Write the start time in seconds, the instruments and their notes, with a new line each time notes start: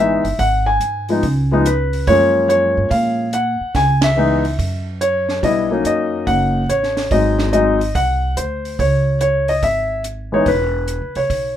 Already playing: upright bass G#1, grand piano E3 G#3
0.00 grand piano B3 D#4 E5
0.24 upright bass G1, open hi-hat
0.39 upright bass G#1, grand piano F#5, kick, open hi-hat
0.66 grand piano G#5
0.80 upright bass G#2, closed hi-hat
1.09 grand piano F3 G#3 B3 D#4, open hi-hat
1.23 upright bass C#2, kick, open hi-hat
1.51 grand piano F3 G#3 B3 D#4
1.66 grand piano B4, closed hi-hat
1.93 open hi-hat
2.07 upright bass F#2, grand piano F3 G#3 A#3 C#4 C#5, kick, open hi-hat
2.49 grand piano C#5, closed hi-hat
2.77 upright bass G2
2.91 upright bass A#2, grand piano F5, kick, open hi-hat
3.33 grand piano F#5, closed hi-hat
3.61 muted upright bass stroke
3.74 upright bass C#2, grand piano G#5, kick, snare, open hi-hat
4.01 grand piano E5, snare, ride
4.16 grand piano E3 G#3 B3 D#4
4.45 open hi-hat
4.59 upright bass F#2, kick, open hi-hat
5.01 grand piano C#5, closed hi-hat
5.29 snare
5.43 upright bass B1, grand piano G3 B3 D4 E4 D#5, kick, open hi-hat
5.71 grand piano F#3 A#3 C#4 D#4
5.84 upright bass F#2, grand piano D#5, closed hi-hat
6.27 upright bass F#1, grand piano F#5, kick, open hi-hat
6.69 upright bass A1, grand piano C#5, closed hi-hat
6.83 snare
6.97 snare, open hi-hat
7.11 upright bass G#1, grand piano F#3 G#3 C4 D#4 D#5, kick, open hi-hat
7.39 snare
7.53 grand piano F#3 G#3 C4 D#4 D#5, closed hi-hat
7.81 open hi-hat
7.95 upright bass C2, grand piano F#5, kick, open hi-hat
8.37 upright bass D2, grand piano C5, closed hi-hat
8.65 open hi-hat
8.79 upright bass C#2, grand piano C#5, kick, open hi-hat
9.21 grand piano C#5, closed hi-hat
9.48 grand piano D#5, open hi-hat
9.62 upright bass G#1, grand piano E5, kick, open hi-hat
10.04 closed hi-hat
10.32 grand piano E3 G#3 B3 D#4 C#5
10.46 upright bass E1, grand piano B4, kick, open hi-hat
10.88 closed hi-hat
11.02 upright bass B1
11.15 upright bass C2, grand piano C#5, open hi-hat
11.30 upright bass B1, kick, open hi-hat